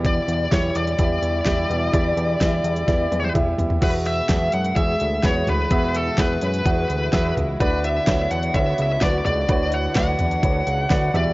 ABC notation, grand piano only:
X:1
M:4/4
L:1/8
Q:1/4=127
K:Edor
V:1 name="Grand piano"
[EGd] z [EGc]2 [EGe]2 [EGe]2 | [EGd]2 [EGe]2 [EGd]2 [EGe]2 | [F^Ge]2 [FGe]2 [FGe]2 [FGB]2 | [F^Ge]2 [FGB]2 [FGf]2 [FGe]2 |
[FBd]2 [FBc]2 [FBc]2 [FBd]2 | [FBc]2 [FBd]2 [FBc]2 [FBd] [FGe] |]
V:2 name="Grand piano" clef=bass
B,,2 z4 z B,,- | B,,2 z6 | B,,3 z4 z | B,,3 z4 z |
D,3 z4 z | D,3 z4 B,, |]